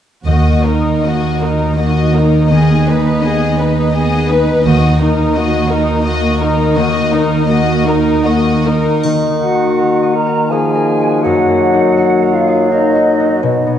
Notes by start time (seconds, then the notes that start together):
0.25 D#2 D#3 A#3 F#4 D#5
0.65 D#4 A#4
1.04 A#3 F#4 D#5
1.41 D#4 A#4
1.78 A#3 F#4 D#5
2.14 D#4 A#4
2.50 D#3 B3 G#4 D#5
2.88 D#4 B4
3.23 B3 G#4 D#5
3.58 D#4 B4
3.95 B3 G#4 D#5
4.30 D#4 B4
4.63 D#2 D#3 A#3 D#5
4.68 F#4
5.01 D#4 A#4
5.35 A#3 F#4 D#5
5.69 D#4 A#4
6.04 A#3 D#5
6.08 F#4
6.41 D#4 A#4
6.76 D#3 A#3 F#4 D#5
7.12 D#4 A#4
7.48 A#3 F#4 D#5
7.85 D#4 A#4
8.24 A#3 F#4 D#5
8.65 D#4 A#4
9.03 D#3 A#3 D#4, triangle
9.30 D#4
9.39 F#4 F#5
9.54 F#4
9.78 A#4
10.03 D#5
10.15 A#4 A#5
10.26 F#5
10.49 F3 G#4 D#5 G#5
10.75 A#4
11.00 F#4
11.21 F#2 F#3 F#4 F#5
11.48 A#3
11.73 D#4
11.97 F#4
12.22 A#4
12.32 F4 F5
12.48 D#5
12.69 D#4 A#4 D#5
12.95 F#4
13.20 D#4
13.42 B2 B3 D#4
13.67 B3